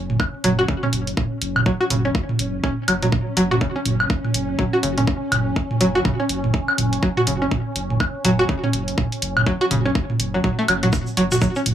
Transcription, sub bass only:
0.00 0.16 F#1 medium
0.44 0.65 F#1 medium
0.93 1.13 F#1 medium
1.42 1.62 F#1 medium
1.90 2.11 F#1 medium
2.39 2.60 F#1 medium
2.88 3.09 F#1 medium
3.37 3.57 F#1 medium
3.85 4.06 F#1 medium
4.34 4.55 F#1 medium
4.83 5.04 F#1 medium
5.32 5.52 F#1 medium
5.81 6.01 F#1 medium
6.29 6.50 F#1 medium
6.78 6.99 F#1 medium
7.27 7.48 F#1 medium
7.76 7.96 F#1 medium
8.25 8.45 F#1 medium
8.73 8.94 F#1 medium
9.22 9.43 F#1 medium
9.71 9.91 F#1 medium
10.20 10.40 F#1 medium
10.68 10.89 F#1 medium
11.17 11.38 F#1 medium
11.66 11.74 F#1 medium

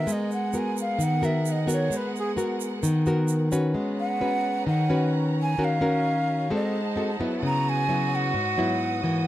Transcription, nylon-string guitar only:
0.00 0.50 B3 medium
0.00 0.50 F#4 medium
0.00 0.50 A#4 medium
0.07 0.97 G#3 medium
0.54 1.19 B3 medium
0.54 1.19 F#4 medium
0.54 1.19 A#4 medium
0.98 1.89 D#3 medium
1.22 1.65 B3 medium
1.22 1.65 F#4 medium
1.22 1.65 A#4 medium
1.67 2.33 B3 medium
1.67 2.33 F#4 medium
1.67 2.33 A#4 medium
1.90 2.80 G#3 medium
2.37 3.02 B3 medium
2.37 3.02 F#4 medium
2.37 3.03 A#4 medium
2.83 3.73 D#3 medium
3.07 3.49 B3 medium
3.07 3.49 F#4 medium
3.07 3.49 A#4 medium
3.52 4.17 C#4 medium
3.52 4.17 F#4 medium
3.52 4.17 B4 medium
3.74 4.64 G#3 medium
4.21 4.66 C#4 soft
4.21 4.67 F#4 soft
4.21 4.67 B4 medium
4.67 5.56 D#3 medium
4.90 5.55 C#4 medium
4.90 5.55 F#4 medium
4.90 5.55 B4 medium
5.58 6.48 D#3 medium
5.58 5.78 C#4 medium
5.58 5.78 F#4 medium
5.58 5.78 A#4 medium
5.81 6.46 C#4 medium
5.81 6.46 F#4 medium
5.81 6.47 A#4 medium
6.50 7.19 G#3 medium
6.50 6.80 C4 medium
6.50 6.80 F#4 medium
6.50 6.80 A4 medium
6.96 7.10 C4 medium
6.96 7.10 F#4 medium
6.96 7.10 A4 medium
7.20 7.85 F#3 medium
7.20 7.85 B3 medium
7.20 7.85 E4 medium
7.43 8.32 C#3 medium
7.89 8.34 F#3 soft
7.89 8.34 B3 soft
7.89 8.34 E4 medium
8.34 9.23 G#2 medium
8.58 8.99 F#3 medium
8.58 9.00 B3 medium
8.58 9.00 E4 medium
9.04 9.27 E3 medium
9.04 9.27 A#3 medium

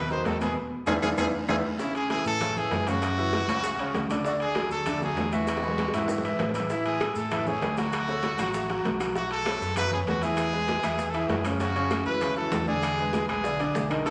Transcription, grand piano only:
0.10 0.35 D#3 medium
0.10 0.35 D#4 medium
0.10 0.36 F#4 medium
0.40 0.53 B2 medium
0.40 0.53 B3 medium
0.40 0.54 B4 medium
0.87 0.97 B3 loud
0.87 0.97 D4 medium
0.87 0.97 E4 medium
1.02 1.12 B3 medium
1.02 1.12 D4 loud
1.02 1.12 E4 medium
1.18 1.28 B3 medium
1.18 1.28 D4 loud
1.18 1.28 E4 medium
1.49 1.58 B3 loud
1.49 1.58 D4 loud
1.49 1.58 E4 loud
1.79 2.04 C#3 medium
1.79 2.05 C#4 medium
1.79 2.05 C#5 medium
2.10 2.35 E3 medium
2.10 2.35 E4 medium
2.10 2.36 A4 medium
2.41 2.54 C#3 medium
2.41 2.54 C#4 medium
2.41 2.54 C#5 medium
2.56 2.81 E3 medium
2.56 2.82 A3 medium
2.56 2.82 E4 medium
2.87 3.12 C#3 medium
2.87 3.12 C#4 medium
2.87 3.13 C#5 medium
3.18 3.43 E3 medium
3.18 3.43 E4 medium
3.18 3.43 F#4 medium
3.49 3.74 C#3 medium
3.49 3.74 C#4 medium
3.49 3.74 C#5 medium
3.80 4.05 C#3 medium
3.80 4.05 C#4 medium
3.80 4.05 C#5 medium
4.10 4.23 D3 medium
4.10 4.23 D4 medium
4.10 4.23 D5 medium
4.26 4.51 D3 medium
4.26 4.51 D4 medium
4.26 4.51 D5 medium
4.56 4.81 F#3 medium
4.56 4.81 F#4 medium
4.56 4.82 A4 medium
4.86 4.99 D3 medium
4.86 4.99 D4 medium
4.86 4.99 D5 medium
5.02 5.27 F#3 medium
5.02 5.27 A3 medium
5.02 5.27 F#4 medium
5.32 5.57 E3 medium
5.32 5.58 E4 medium
5.32 5.58 E5 medium
5.63 5.88 G#3 medium
5.63 5.89 G#4 medium
5.63 5.89 B4 medium
5.94 6.19 E3 medium
5.94 6.19 E4 medium
5.94 6.19 E5 medium
6.24 6.49 E3 medium
6.24 6.49 E4 medium
6.24 6.50 E5 medium
6.54 6.67 E3 medium
6.54 6.67 E4 medium
6.54 6.68 E5 medium
6.71 6.96 E3 medium
6.71 6.96 E4 medium
6.71 6.96 E5 medium
7.01 7.26 A3 medium
7.01 7.26 G#4 medium
7.01 7.26 A4 medium
7.31 7.44 E3 medium
7.31 7.44 E4 medium
7.31 7.44 E5 medium
7.47 7.72 A3 medium
7.47 7.72 G#4 medium
7.47 7.72 C#5 medium
7.78 8.03 F#3 medium
7.78 8.03 F#4 medium
7.78 8.03 F#5 medium
8.08 8.33 A3 medium
8.08 8.34 A4 medium
8.08 8.34 C#5 medium
8.39 8.64 F#3 medium
8.39 8.64 F#4 medium
8.39 8.64 F#5 medium
8.70 8.95 F#3 medium
8.70 8.95 F#4 medium
8.70 8.95 F#5 medium
9.00 9.13 F#3 medium
9.00 9.13 F#4 medium
9.00 9.13 F#5 medium
9.16 9.41 F#3 medium
9.16 9.41 F#4 medium
9.16 9.41 F#5 medium
9.46 9.71 B3 medium
9.46 9.71 B4 medium
9.46 9.71 C#5 medium
9.77 9.89 F#3 medium
9.77 9.90 F#4 medium
9.77 9.90 F#5 medium
9.92 10.17 B3 medium
9.92 10.17 B4 medium
9.92 10.17 C#5 medium
10.22 10.47 E3 medium
10.22 10.48 E4 medium
10.22 10.48 E5 medium
10.53 10.78 G#3 medium
10.53 10.78 G#4 medium
10.53 10.78 B4 medium
10.84 11.09 E3 medium
10.84 11.09 E4 medium
10.84 11.09 E5 medium
11.14 11.39 E3 medium
11.14 11.40 E4 medium
11.14 11.40 E5 medium
11.46 11.58 C#3 medium
11.46 11.58 C#4 medium
11.46 11.59 C#5 medium
11.60 11.73 C#3 medium
11.60 11.73 C#4 medium
11.60 11.73 C#5 medium
11.76 12.01 C#3 loud
11.76 12.01 C#4 medium
11.76 12.01 C#5 medium
12.06 12.19 E3 medium
12.06 12.19 E4 medium
12.06 12.19 F#4 medium
12.21 12.34 C#3 medium
12.21 12.34 C#4 medium
12.21 12.34 C#5 medium
12.37 12.62 E3 medium
12.37 12.62 E4 medium
12.37 12.62 F#4 medium
12.67 12.93 D3 medium
12.67 12.93 D4 medium
12.67 12.93 D5 medium
12.98 13.24 G#3 medium
12.98 13.24 G#4 medium
12.98 13.24 B4 medium
13.29 13.42 G#3 medium
13.29 13.42 G#4 medium
13.29 13.42 B4 medium
13.44 13.57 D3 medium
13.44 13.57 D4 medium
13.44 13.58 D5 medium
13.60 13.85 D3 medium
13.60 13.85 D4 medium
13.60 13.86 D5 medium
13.90 14.03 D#3 medium
13.90 14.03 D#4 medium
13.90 14.04 D#5 medium
14.06 14.10 D#3 medium
14.06 14.10 D#4 medium
14.06 14.10 D#5 medium

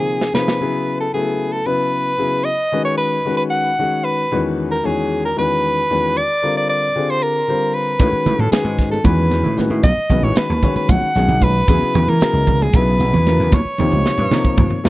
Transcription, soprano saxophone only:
0.00 0.32 G#4 loud
0.34 0.97 B4 medium
1.00 1.13 A4 medium
1.14 1.54 G#4 medium
1.53 1.68 A4 medium
1.66 2.46 B4 medium
2.45 2.84 D#5 loud
2.85 2.97 C#5 medium
2.97 3.35 B4 medium
3.37 3.43 B4 medium
3.50 4.06 F#5 loud
4.04 4.43 B4 medium
4.71 4.87 A#4 medium
4.86 5.24 G#4 medium
5.25 5.36 A#4 medium
5.38 6.19 B4 loud
6.17 6.56 D5 loud
6.57 6.68 D5 medium
6.69 7.11 D5 medium
7.10 7.24 C5 medium
7.23 7.76 A#4 medium
7.74 8.42 B4 medium
8.40 8.51 A4 medium
8.52 8.89 G#4 medium
8.91 9.07 A4 medium
9.05 9.57 B4 medium
9.83 10.25 D#5 loud
10.24 10.39 C#5 medium
10.37 10.76 B4 medium
10.76 10.92 B4 medium
10.90 11.45 F#5 loud
11.43 12.11 B4 loud
12.09 12.64 A#4 loud
12.63 12.77 G#4 medium
12.76 13.56 B4 medium
13.54 14.89 C#5 medium

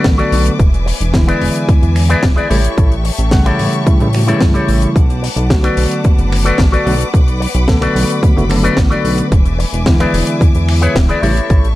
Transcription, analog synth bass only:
0.05 0.23 A1 loud
0.32 0.50 B1 medium
0.59 0.93 E1 loud
1.01 1.34 E1 medium
1.41 1.50 E1 medium
1.68 1.80 E2 soft
1.82 2.16 E2 medium
2.23 2.41 D1 loud
2.50 2.68 A1 medium
2.78 3.11 A1 loud
3.19 3.52 A1 medium
3.59 3.68 A1 medium
4.00 4.34 A2 medium
4.41 4.59 G1 loud
4.69 4.87 A1 medium
4.96 5.29 B1 loud
5.36 5.70 B1 medium
5.77 5.87 B1 medium
6.05 6.16 F#1 soft
6.18 6.52 F#1 medium
6.59 6.77 A1 loud
6.86 7.04 B1 medium
7.14 7.47 B1 loud
7.55 7.88 B1 medium
7.95 8.05 B1 medium
8.36 8.70 F#1 medium
8.77 8.95 A1 loud
9.05 9.23 B1 medium
9.32 9.65 E1 loud
9.73 10.06 E1 medium
10.14 10.23 E1 loud
10.41 10.52 E2 soft
10.55 10.88 E2 medium
10.95 11.13 D1 loud
11.23 11.41 A1 medium
11.50 11.75 A1 loud

